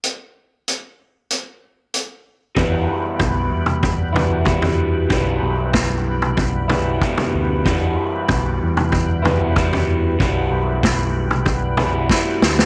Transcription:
<<
  \new Staff \with { instrumentName = "Tonewheel organ" } { \time 4/4 \key e \minor \tempo 4 = 95 r1 | <e' b' g'' b''>1~ | <e' b' g'' b''>1~ | <e' b' g'' b''>1~ |
<e' b' g'' b''>1 | }
  \new Staff \with { instrumentName = "Clean electric guitar" } { \clef bass \time 4/4 \key e \minor r1 | <e, b, e g b e'>2~ <e, b, e g b e'>8 <e, b, e g b e'>8 <e, b, e g b e'>4 | <e, b, e g b e'>2~ <e, b, e g b e'>8 <e, b, e g b e'>8 <e, b, e g b e'>4 | <e, b, e g b e'>2~ <e, b, e g b e'>8 <e, b, e g b e'>8 <e, b, e g b e'>4 |
<e, b, e g b e'>2~ <e, b, e g b e'>8 <e, b, e g b e'>8 <e, b, e g b e'>4 | }
  \new Staff \with { instrumentName = "Picked electric bass" } { \clef bass \time 4/4 \key e \minor r1 | e,8 r8 b,,8 e,4 e,16 e,4~ e,16 | b,,8 b,,8 b,,2 r8 d,8 | e,8 r8 b,,8 e,4 e,16 e,4~ e,16 |
b,,8 b,,8 b,,2 r8 d,8 | }
  \new DrumStaff \with { instrumentName = "Drums" } \drummode { \time 4/4 hh4 hh4 hh4 hh4 | <bd tomfh>4 <bd tomfh>8. toml16 <bd tomfh>8 <tomfh toml>8 <bd toml>16 tomfh8. | <bd tomfh>4 <bd sn tomfh>8. toml16 <bd tomfh>8 <tomfh toml>8 <bd toml>16 <tomfh toml>8. | <bd tomfh>4 <bd tomfh>8. toml16 <bd tomfh>8 <tomfh toml>8 <bd toml>16 tomfh8. |
<bd tomfh>4 <bd sn tomfh>8. toml16 <bd tomfh>8 <tomfh toml>8 <bd sn>8 sn16 sn16 | }
>>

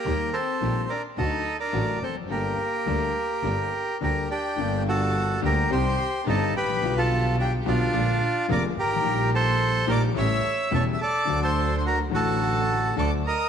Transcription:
<<
  \new Staff \with { instrumentName = "Violin section" } { \time 4/4 \key g \minor \tempo 4 = 107 bes8 c'4 d'8 ees'8. d'8. c'8 | bes2. bes''8 g''8~ | g''8 a''4 bes''8 c'''4 a''8 b''8~ | b''16 a''8. g''8 f''4. d'''8 bes''8~ |
bes''8 c'''4 d'''8 e'''4 cis'''16. e'''32 d'''8~ | d'''16 c'''8~ c'''32 c'''32 bes''8 a''4. d'''8 ees'''8 | }
  \new Staff \with { instrumentName = "Bandoneon" } { \time 4/4 \key g \minor << { bes'8 c''4 d''8 ees''8. d''8. c''8 | bes'2. bes'8 g'8~ | g'8 a'4 bes'8 c''4 a'8 b'8~ | b'16 a'8. g'8 f'4. d''8 bes'8~ |
bes'8 c''4 d''8 e''4 cis''16. e''32 d''8~ | d''16 c''8~ c''32 c''32 bes'8 a'4. d''8 ees''8 | } \\ { g'8 a'4 bes'8 a'8. bes'8. a'8 | g'2. g'8 d'8~ | d'8 fis'4 g'8 g'4 ees'8 g'8~ | g'16 f'8. d'8 d'4. bes'8 g'8~ |
g'8 a'4 bes'8 cis''4 a'8 a'8~ | a'16 a'8. fis'8 fis'4. a'8 bes'8 | } >> }
  \new Staff \with { instrumentName = "String section" } { \time 4/4 \key g \minor <bes ees' g'>8 r8 <bes ees' g'>8 r8 <a d' fis'>8 r8 <a d' fis'>8 r8 | <bes g' a'>8 r8 <bes g' a'>8 r8 <bes g' a'>8 r8 <bes g' a'>8 r8 | <g bes d'>4. <bes d' g'>8 <c' ees' g'>8 r8 <c' ees' g'>8 r8 | <b f' g'>4. <b f' g'>8 <bes d' aes'>8 r8 <bes d' aes'>8 r8 |
<bes ees' g'>4. <bes ees' g'>8 <a cis' g'>8 r8 <a cis' g'>8 r8 | <a d' fis'>4. <a d' fis'>4. <a d' fis'>8 r8 | }
  \new Staff \with { instrumentName = "Grand piano" } { \clef bass \time 4/4 \key g \minor <ees, ees g bes g'>8 r8 <bes,, bes, ees g bes g'>8 r8 <d, d fis a fis'>8 r8 <a,, a, d fis a fis'>8 r32 e,32 f,32 fis,32 | <g,, g, g bes d' a'>8 r8 <d, d g bes d' a'>8 r8 <g,, g, g bes d' a'>8 r8 <d, d g bes d' a'>8 r8 | <g,, g, d g bes d'>4. <d, d g bes g'>8 <c, c ees g c' g'>8 r8 <g,, g, ees g c' g'>8 r32 aes,,32 a,,32 bes,,32 | <b,, b, d g b f'>4. <b,, b, d g b f'>8 <bes,, bes, d aes bes f'>8 r8 <f,, f, d aes bes f'>8 r32 g,,32 aes,,32 a,,32 |
<bes,, bes, ees g bes g'>4. <bes,, bes, ees g bes g'>8 <a,, a, cis g a e'>8 r8 <e,, e, cis g a e'>8 r8 | <d, d fis a fis'>4. <a,, a, d fis a fis'>4. <d, d fis a fis'>8 r8 | }
  \new Staff \with { instrumentName = "Double bass" } { \clef bass \time 4/4 \key g \minor ees,8 r8 bes,,8 r8 d,8 r8 a,,8 f,,8 | g,,8 r8 d,8 r8 g,,8 r8 d,8 r8 | g,,4. d,8 c,8 r8 g,,8 a,,8 | b,,4. b,,8 bes,,8 r8 f,,8 aes,,8 |
bes,,4. bes,,8 a,,8 r8 e,,8 r8 | d,4. a,,4. d,8 r8 | }
>>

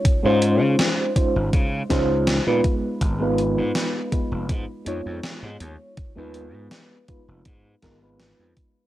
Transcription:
<<
  \new Staff \with { instrumentName = "FM electric piano" } { \time 4/4 \key aes \major \tempo 4 = 81 <aes des' ees' f' des''>16 <aes des' ees' f' c''>4~ <aes des' ees' f' c''>16 <aes des' ees' f' c''>4 <aes des' ees' f' c''>8. <aes ces' ees' f' ces''>8.~ | <aes ces' ees' f' ces''>16 <aes ces' ees' f' ces''>4~ <aes ces' ees' f' ces''>16 <aes ces' ees' f' ces''>4 <aes ces' ees' f' des''>4.~ | <aes ces' ees' f' des''>16 <aes ces' ees' f' ces''>4~ <aes ces' ees' f' ces''>16 <aes ces' ees' f' ces''>4 <aes ces' ees' f' bes'>16 <aes ces' ees' f' ces''>4~ <aes ces' ees' f' ces''>16 | }
  \new Staff \with { instrumentName = "Slap bass" } { \clef bass \time 4/4 \key aes \major r16 aes,8 des16 r8. aes,,16 des8 des,8. bes,16 r8 | aes,,8. aes,16 r8. f,,16 aes,16 r16 f,16 f,16 r16 aes,16 ees,16 r16 | r16 ees,8 aes,16 r8. f,,16 aes,8 aes,,8. f,16 r8 | }
  \new DrumStaff \with { instrumentName = "Drums" } \drummode { \time 4/4 <hh bd>8 hh8 <hh sn>8 <hh bd>8 <hh bd>8 <hh bd sn>8 <hh sn>8 <hh bd>8 | <hh bd>8 hh8 <hh sn>8 <hh bd>8 <hh bd>8 hh8 <hh sn>8 hh8 | <hh bd>8 hh8 <hh sn>8 <hh bd>8 <hh bd>8 <hh bd sn>8 <hh sn>8 <hh bd>8 | }
>>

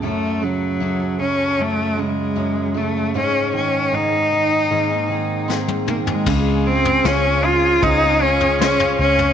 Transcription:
<<
  \new Staff \with { instrumentName = "Analog synth pad" } { \time 4/4 \key des \major \tempo 4 = 77 r1 | r1 | <aes' f'' aes''>1 | }
  \new Staff \with { instrumentName = "Cello" } { \time 4/4 \key des \major a8 ges4 des'8 a8 aes4 a8 | des'8 des'8 ees'2 r8 bes16 aes16~ | aes8 c'8 des'8 f'8 ees'8 des'8 des'8 des'8 | }
  \new Staff \with { instrumentName = "Steel-string acoustic guitar" } { \time 4/4 \key des \major <ges des' ges' a'>8 <ges des' ges' a'>8 <ges des' ges' a'>16 <des' ges' a'>8 <des' ges' a'>8 <des' ges' a'>16 <ges des' ges'>8 <ges des' ges'>8 <ges des' ges' a'>16 <des' ges' a'>16 | <aes, des aes des' ees' aes'>8 <aes des' ees' aes'>8 <aes, des aes des' ees' aes'>16 <aes des' ees' aes'>8 <aes des' ees' aes'>16 <aes, ees bes c' ees' aes'>16 <bes c' ees' aes'>16 <bes c' ees' aes'>8 <aes, ees bes c' ees' aes'>8 <bes c' ees' aes'>16 <bes c' ees' aes'>16 | <des aes c' f' aes'>8 <aes c' f' aes'>8 <des aes c' f' aes'>16 <c' f' aes'>16 <aes c' aes'>8. <c' f' aes'>16 <aes f' aes'>8 <des aes f' aes'>8 <aes c' f' aes'>16 <c' f' aes'>16 | }
  \new Staff \with { instrumentName = "Grand piano" } { \clef bass \time 4/4 \key des \major ges,8 des8 ges,8 des8 ges,8 des8 ges,8 des8 | aes,8 ees8 aes,8 ees8 aes,8 ees8 c'8 ees8 | des4 <des' f' c''>4 <des' f' c''>4 <des' f' c''>4 | }
  \new Staff \with { instrumentName = "Fingered electric bass" } { \clef bass \time 4/4 \key des \major r1 | r1 | des,4 des,4 des,4. des,8 | }
  \new DrumStaff \with { instrumentName = "Drums" } \drummode { \time 4/4 r4 r4 r4 r4 | r4 r4 r4 sn16 tommh16 toml16 tomfh16 | <cymc bd tomfh>8. tomfh16 sn4 <bd tomfh>8. tomfh16 sn16 tomfh8 tomfh16 | }
>>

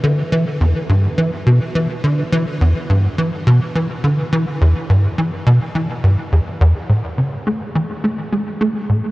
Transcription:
\new Staff \with { instrumentName = "Analog synth bass" } { \clef bass \time 4/4 \key e \dorian \tempo 4 = 105 d8 e8 e,8 g,8 e8 b,8 e8 d8 | e8 e,8 g,8 e8 b,8 e8 d8 e8 | e,8 g,8 e8 b,8 e8 g,8 e,8 e,8 | \key a \major a,8 cis8 a8 e8 a8 gis8 a8 a,8 | }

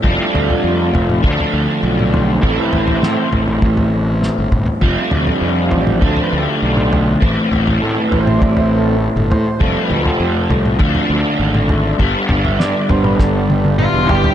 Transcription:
<<
  \new Staff \with { instrumentName = "Lead electric guitar" } { \time 4/4 \key a \minor \tempo 4 = 100 r1 | r1 | r1 | r1 |
r1 | r2. f'8 g'8 | }
  \new Staff \with { instrumentName = "Transistor combo organ" } { \time 4/4 \key a \minor e'8 f'4. r4 \tuplet 3/2 { f'4 g'8 } | \tuplet 3/2 { a'8 b'8 c''8~ } c''8. r2 r16 | r4 \tuplet 3/2 { f'4 g'8 a'8 b'8 g'8~ } g'8. r16 | r4 \tuplet 3/2 { a'8 b'8 c''8 d''8 c''8 a'8~ } a'16 r16 c''8 |
\tuplet 3/2 { a'8 b'8 a'8 g'8 a'8. r16 } r2 | r8 f''16 e''16 d''8 c''16 b'16 a'8 g'16 f'16 e'4 | }
  \new Staff \with { instrumentName = "Transistor combo organ" } { \time 4/4 \key a \minor <g a d'>4. r8 <f c'>2 | <a c' e'>4. r8 <a c' e'>8 r4. | <g a d'>2 <f c'>8 r4. | r4. <a c' e'>4. r4 |
<g a d'>8 r4. <f c'>8 r4. | r4. <g b d'>2~ <g b d'>8 | }
  \new Staff \with { instrumentName = "Overdriven electric guitar" } { \time 4/4 \key a \minor <f a c' f'>2 <d a d' f'>2 | <a, e a c' e'>1 | <f a c' f'>2 <d a d' f'>2 | <a, e a c' e'>1 |
<f a c' f'>2 <d a d' f'>2 | <g, d g b d'>1 | }
  \new Staff \with { instrumentName = "Fingered electric bass" } { \clef bass \time 4/4 \key a \minor f,,16 r16 d,16 r16 f,8 f,,8 d,16 r16 d,16 r16 b,,4 | a,,16 r16 a,,8 a,16 r16 a,,8 a,,4~ a,,16 g,,16 g,,16 r16 | f,,16 r16 d,16 r16 f,8 a,,8 d,16 r16 d,16 r16 b,,4 | a,,16 r16 a,,8 a,16 r16 a,,8 a,,4~ a,,16 g,,16 a,16 r16 |
f,,16 r16 d,16 r16 f,8 c,8 d,16 r16 d,16 r16 gis,,4 | g,,16 r16 g,,8 g,16 r16 g,,8 g,,4~ g,,16 e,,16 g,,16 r16 | }
  \new DrumStaff \with { instrumentName = "Drums" } \drummode { \time 4/4 <bd tomfh>8 tomfh16 tomfh16 r8 tomfh16 toml16 <bd tomfh>16 tomfh8. r16 toml16 tomfh8 | <bd tomfh>8 tomfh16 tomfh16 sn8 tomfh16 toml16 <bd tomfh>16 tomfh8. sn8 <bd tomfh toml>16 tomfh16 | <bd tomfh>8 tomfh16 tomfh16 r8 tomfh16 toml16 <bd tomfh>16 tomfh8. r16 toml16 tomfh8 | <bd tomfh>8 tomfh16 tomfh16 r8 tomfh16 toml16 <bd tomfh>16 tomfh8. r16 toml16 tomfh8 |
<bd tomfh>8 tomfh16 tomfh16 r8 tomfh16 toml16 <bd tomfh>16 tomfh8. r16 toml16 tomfh8 | <bd tomfh>8 tomfh16 tomfh16 sn8 tomfh16 toml16 <bd sn>8 tommh16 tommh16 toml8 tomfh16 tomfh16 | }
>>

